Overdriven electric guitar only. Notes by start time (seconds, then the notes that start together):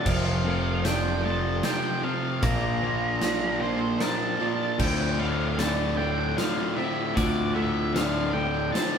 0.05 F2 C3 F3
0.44 F2 C3 F3
0.83 F2 C3 F3
1.24 F2 C3 F3
1.63 F2 C3 F3
2.03 F2 C3 F3
2.43 A#2 F3 A#3
2.82 A#2 F3 A#3
3.22 A#2 F3 A#3
3.61 A#2 F3 A#3
4.00 A#2 F3 A#3
4.40 A#2 F3 A#3
4.79 D2 A2 D3
5.18 D2 A2 D3
5.58 D2 A2 D3
5.98 D2 A2 D3
6.38 D2 A2 D3
6.77 D2 A2 D3
7.17 D2 A2 D3
7.56 D2 A2 D3
7.95 D2 A2 D3
8.34 D2 A2 D3
8.75 D2 A2 D3